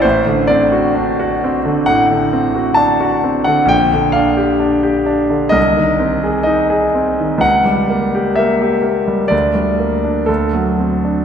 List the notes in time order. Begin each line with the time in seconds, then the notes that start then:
0.02 A1 C5
0.26 D3
0.47 C4 D5
0.72 F#4
0.95 D4
1.19 F#4
1.44 C4
1.65 D3
1.86 A2 F#5
2.11 D3
2.33 C4
2.55 F#4
2.74 D4 A5
3.00 F#4
3.23 C4
3.44 D3 F#5
3.65 A#1 G5
3.93 D3
4.12 D4 F5
4.37 G4
4.60 D4
4.83 G4
5.06 D4
5.30 D3
5.49 C2 D#5
5.77 D#3
5.99 C4
6.23 G#4
6.43 D#4 D#5
6.70 G#4
6.94 C4
7.19 D#3
7.38 C#2 F#5
7.66 G3
7.89 A#3
8.15 G4
8.36 A#3 E5
8.62 G4
8.82 A#3
9.08 G3
9.28 D2 D5
9.55 G3
9.79 A#3
10.04 D4
10.26 D2 A4
10.53 F#3
10.79 C4
11.04 D4